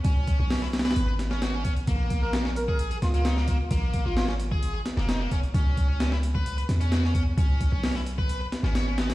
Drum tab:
HH |x---x---o---xxxxx---x---x---x-x-|x---x---x---x---x-x-x-x-x---x---|x---x---o---x---x---x---x---x-x-|x---x---x---x---x-x-x-x-x---x---|
SD |--------o-o-oooo----o-o-o-------|--------o-o---------o---o-o-----|--------o-o---------o-o-o-------|--------o-o---------o---o-o-----|
BD |o---o-----------------------o---|o---o---------o-------------o---|o---o---------o-------------o---|o---o---------o-------------o---|

HH |x---x---o---x---x---x---x---x-x-|
SD |--------o-o---------o-o-o---o-o-|
BD |o---o---------o-----------------|